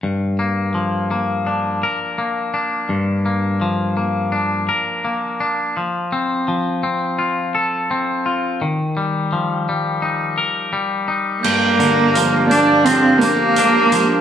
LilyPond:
<<
  \new Staff \with { instrumentName = "Glockenspiel" } { \time 4/4 \key g \minor \tempo 4 = 84 r1 | r1 | r1 | r1 |
g'''4 f'''8 g'''8 g'''4 f'''4 | }
  \new Staff \with { instrumentName = "Analog synth pad" } { \time 4/4 \key g \minor r1 | r1 | r1 | r1 |
<d' g' bes' f''>1 | }
  \new Staff \with { instrumentName = "Cello" } { \time 4/4 \key g \minor r1 | r1 | r1 | r1 |
bes4. d'8 c'8 bes4. | }
  \new Staff \with { instrumentName = "Clean electric guitar" } { \time 4/4 \key g \minor g,8 bes8 f8 bes8 d'8 bes'8 bes8 d'8 | g,8 bes8 f8 bes8 d'8 bes'8 bes8 d'8 | f8 c'8 f8 c'8 f'8 a'8 c'8 f'8 | ees8 g8 f8 g8 ees'8 bes'8 g8 ees'8 |
g,8 d8 f8 d'8 f8 bes8 d'8 f8 | }
  \new DrumStaff \with { instrumentName = "Drums" } \drummode { \time 4/4 r4 r4 r4 r4 | r4 r4 r4 r4 | r4 r4 r4 r4 | r4 r4 r4 r4 |
cymc8 hh8 hh8 hh8 hh8 hh8 hh8 hh8 | }
>>